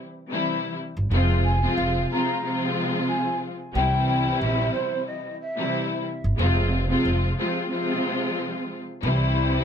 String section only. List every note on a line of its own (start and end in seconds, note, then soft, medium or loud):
0.29 0.74 C3 medium
0.29 0.74 E3 medium
0.29 0.74 G3 medium
0.29 0.75 C4 medium
0.29 0.75 E4 loud
1.10 1.57 C3 medium
1.10 1.58 F3 medium
1.10 1.58 G#3 medium
1.10 1.58 C4 medium
1.10 1.59 F4 loud
1.60 2.05 C3 medium
1.60 2.05 F3 medium
1.60 2.06 G#3 medium
1.60 2.06 C4 medium
1.60 2.06 F4 loud
2.09 2.40 C3 medium
2.09 2.40 F3 medium
2.09 2.41 G#3 medium
2.09 2.41 C4 medium
2.09 2.42 F4 loud
2.41 3.49 C3 loud
2.41 3.49 F3 medium
2.41 3.49 G#3 medium
2.41 3.50 C4 loud
2.41 3.50 F4 loud
3.74 5.27 C3 loud
3.74 5.27 E3 medium
3.74 5.28 G3 loud
3.74 5.28 C4 medium
3.74 5.29 E4 loud
5.56 6.01 C3 medium
5.56 6.01 E3 medium
5.56 6.02 G3 medium
5.56 6.02 C4 medium
5.56 6.02 E4 loud
6.38 6.85 C3 loud
6.38 6.85 F3 medium
6.38 6.85 G#3 medium
6.38 6.86 C4 loud
6.38 6.86 F4 loud
6.87 7.33 C3 loud
6.87 7.33 F3 medium
6.87 7.33 G#3 medium
6.87 7.34 C4 medium
6.87 7.34 F4 loud
7.37 7.67 C3 medium
7.37 7.68 F3 medium
7.37 7.68 G#3 medium
7.37 7.69 C4 medium
7.37 7.69 F4 loud
7.69 8.76 C3 loud
7.69 8.77 F3 medium
7.69 8.77 G#3 medium
7.69 8.77 C4 medium
7.69 8.78 F4 loud
9.02 9.64 C3 loud
9.02 9.64 E3 medium
9.02 9.64 G3 loud
9.02 9.64 C4 medium
9.02 9.64 E4 loud